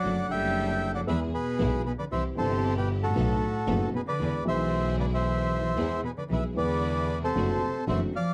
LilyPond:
<<
  \new Staff \with { instrumentName = "Bandoneon" } { \time 4/4 \key e \phrygian \tempo 4 = 115 <d'' fis''>8 <e'' g''>4~ <e'' g''>16 <d'' fis''>16 <b' e''>8 <gis' b'>4 <gis' b'>16 <b' d''>16 | <c'' e''>8 <a' c''>8. <g' b'>8 <fis' a'>4.~ <fis' a'>16 <gis' b'>16 <b' d''>16~ | <b' d''>8 <c'' e''>4 <b' d''>16 <c'' e''>4.~ <c'' e''>16 <gis' b'>16 <b' d''>16 | <b' e''>8 <b' d''>4~ <b' d''>16 <a' c''>4~ <a' c''>16 <c'' e''>8 <d'' f''>8 | }
  \new Staff \with { instrumentName = "String section" } { \time 4/4 \key e \phrygian <d' fis' a'>8 <d' a'>4. <b e' gis'>8 r8 <b e' gis'>8 r8 | <c' e' g'>8 <c' e' g'>4. <b dis' a'>8 r8 <b dis' a'>8 r8 | <b e' gis'>8 <gis e' gis'>2~ <gis e' gis'>8 <b e' gis'>8 r8 | <b e' gis'>8 <b e' gis'>4. <c' d' fis'>8 r8 <c' d' fis'>8 r8 | }
  \new Staff \with { instrumentName = "Grand piano" } { \clef bass \time 4/4 \key e \phrygian <fis, d fis a fis'>8 <d a a'>4. <e, e gis b gis'>8 r8 <b,, b, e gis b gis'>8 r8 | <c, c e g c' g'>8 <g,, g, e g c' g'>4. <b,, b, dis a b fis'>8 r8 <fis,, fis, dis a b fis'>8 r8 | <e, e gis b gis'>8 <b,, b, e gis gis'>2~ <b,, b, e gis gis'>8 <e, e gis b gis'>8 r8 | <b,, b, e gis b gis'>8 <e, e gis b gis'>4. <fis, d fis a c' fis'>8 r8 <fis, d fis a c' fis'>8 r8 | }
  \new Staff \with { instrumentName = "Cello" } { \clef bass \time 4/4 \key e \phrygian fis8 g4~ g16 fis16 e8 b,4 b,16 d16 | e8 c8. b,8 a,4.~ a,16 b,16 d16~ | d8 e4 d16 e4.~ e16 b,16 d16 | e8 d4~ d16 c4~ c16 e8 f8 | }
  \new Staff \with { instrumentName = "Double bass" } { \clef bass \time 4/4 \key e \phrygian fis,,8 fis,,4. e,8 r8 b,,8 r8 | c,8 g,,4. b,,8 r8 fis,,8 r8 | e,8 b,,2~ b,,8 e,8 r8 | b,,8 e,4. fis,,8 r8 fis,,8 r8 | }
>>